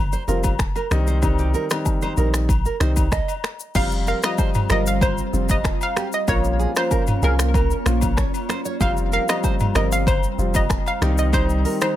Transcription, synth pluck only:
3.76 F5
4.08 F5
4.25 D#5
4.72 D#5
4.88 F5
5.02 C5
5.51 D#5
5.83 F5
6.14 D#5
6.29 C#5
6.78 C5
7.24 A#4
8.82 F5
9.13 F5
9.30 D#5
9.76 D#5
9.92 F5
10.08 C5
10.56 D#5
10.88 F5
11.19 D#5
11.34 C5
11.82 C5

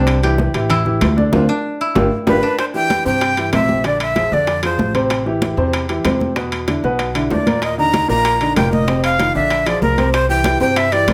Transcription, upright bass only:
Already playing: C2
0.54 A1
1.01 D2
1.33 D2
1.96 G1
2.28 G1
3.06 G2
3.53 A#1
4.32 F2
4.78 A1
5.57 E2
6.05 E2
6.84 B1
7.31 D#2
8.09 A#1
8.57 F1
9.35 A#1
9.82 C2
10.61 G2
11.08 D2

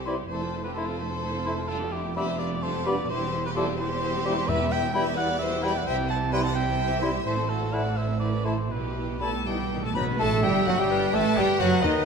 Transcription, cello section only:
Already playing: C2
0.29 F2
3.10 E2
5.86 C3
7.25 A2
8.70 B2
9.19 A3
9.45 G3
9.81 A3
9.94 B3
10.19 A3
10.43 G3
10.67 F#3
10.78 G3
11.14 A3
11.37 G3
11.60 F#3
11.83 D#3

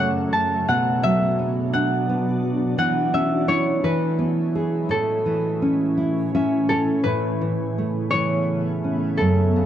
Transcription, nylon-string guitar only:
Already playing: F#2 C#3 C#4
0.00 A3
0.68 B2
1.04 F#3
1.39 B3
1.74 D4
2.09 B3
2.78 E3
3.14 C#4
3.48 E4
3.84 E3
4.19 B3
4.55 G#4
4.89 A2
5.26 E3
5.62 C#4
5.97 E4
6.34 C#4 E5
6.70 C#5
7.05 A2
7.42 E3
7.78 A3
8.13 E3
8.84 C#4
9.21 F#2
9.56 C#3

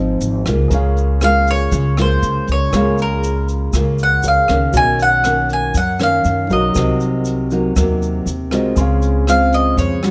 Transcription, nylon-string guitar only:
Already playing: G#2 F3 C4 D#4
0.47 G#3 A#3 F4
0.73 C#3
1.22 G#3 A#3 F4
1.73 C#3
1.98 G#3 A#3 F4
2.74 C#3 G#3 A#3 F4
3.74 C#3 G#3 A#3 F4
4.49 D#3 A#3 C#4
4.75 B2
5.25 D#3 A#3 C#4
5.76 F#2
6.00 D#3 A#3 C#4
6.50 F#3 A#3 D#4
6.76 C3
7.51 F#3 A#3 D#4
7.76 C3 F#3 A#3 D#4
8.52 G#3 C4 F4
8.77 C#3
9.28 G#3 C4 F4
9.78 C#3
10.03 G3 D4 F#4

